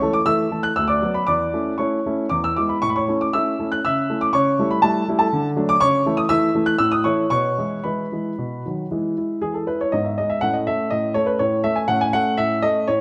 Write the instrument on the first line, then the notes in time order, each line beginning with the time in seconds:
grand piano
Already playing: C#5 C#6
0.01 E3 A3 A4
0.13 D6
0.26 E3 A3 A4 E5 E6
0.51 E3 A3 A4
0.63 F#6
0.76 D2 E6
0.88 D5 D6
1.02 F#3 B3 F#4
1.14 B5
1.27 E2 D5 D6
1.53 A3 C#4 E4
1.78 A3 C#4 E4 C#5 C#6
2.06 A3 C#4 E4
2.29 E2 D6
2.44 E6
2.56 G#3 B3 E4 D6
2.69 B5
2.82 A2 C#6
2.90 B5
2.96 C#5 C#6
3.08 A3 C#4 E4
3.21 D6
3.33 A3 C#4 E4 E5 E6
3.59 A3 C#4 E4
3.72 F#6
3.85 C#3 E5 E6
4.10 A3 C#4 E4
4.21 D6
4.33 C#3 C#5 C#6
4.59 G3 A3 E4
4.71 B5
4.82 G3 A3 E4 A4 A5
5.08 G3 A3 E4
5.19 A4 A5
5.33 D3
5.56 F#3 A3 D4
5.69 D6
5.80 C#3 C#5 C#6
6.06 E3 A3 E4
6.17 D#6
6.29 E3 A3 E4 E5 E6
6.54 E3 A3 E4
6.66 F#6
6.79 A2 E6
6.92 D#6
7.04 E3 A3 E4 C#5 C#6
7.30 B2 C#5 C#6
7.58 E3 G#3 E4
7.84 E3 G#3 E4 B4 B5
8.12 E3 G#3 E4
8.38 B2
8.66 D#3 F#3 F#4
8.91 E3 G#3 E4
9.18 E4
9.41 E3 G#4
9.54 A4
9.67 E4 B4
9.81 C#5
9.92 G#2 B3 D#4 D#5
10.04 E5
10.18 G#3 D#5
10.30 E5
10.41 A2 A3 C#4 F#5
10.54 D#5
10.67 A3 E5
10.90 A2 D#5
11.14 A3 C#5
11.26 B4
11.39 A2 C#5
11.64 A3 E5
11.76 G#5
11.88 A2 A3 C#4 F#5
12.01 G#5
12.13 A3 F#5
12.38 A2 E5
12.62 A3 D#5
12.88 A2 C#5